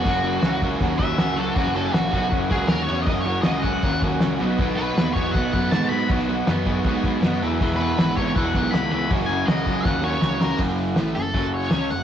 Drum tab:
CC |x-x-x-x-x-x-x-x-|x-x-x-x-x-x-x-x-|x-x-x-x-x-x-x-x-|x-x-x-x-x-x-x-x-|
HH |----------------|----------------|----------------|----------------|
SD |----o-------o---|-o--o-------o---|-o--o-------o---|-o--o-------o---|
BD |o-----o-o-o-----|o-----o-o-o-----|o-----o-o-o-----|o-----o-o-o-----|

CC |x-x-x-x-x-x-x-x-|x-x-x-x-x-x-x-x-|x-x-x-x---------|x---------------|
HH |----------------|----------------|----------------|--o-o-o-o-o-o-o-|
SD |-o--o-------o---|-o--o-------o---|-o--o---o---o-o-|----o-o-----o---|
BD |o-----o-o-o-----|o-----o-o-o-----|o-----o-o-------|o-------o-------|